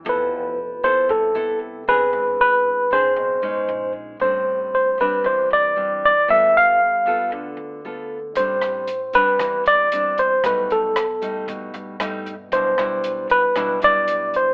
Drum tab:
HH |--------|--------|--------|--------|
SD |--------|--------|--------|--------|
BD |--------|--------|--------|--------|

HH |xxxxxxxx|xxxxxxxx|xxxxxxxx|
SD |-r--r---|r-r---r-|-r--r---|
BD |o--oo--o|o--oo--o|o--oo--o|